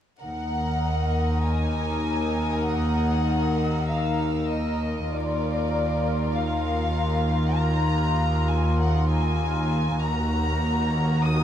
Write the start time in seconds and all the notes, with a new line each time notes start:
0.21 D#2 D#4 A#4 F#5 A#5
0.85 D#6
1.45 G#5
2.67 F#5
3.81 E6
3.89 F5
4.50 D#5
5.12 D#2 F4 A#4 D5
6.34 F5
7.55 A#5
8.48 G#5
8.80 F#5
9.11 G#5
10.02 D#2 F#4 A#4 A#5
11.23 D#6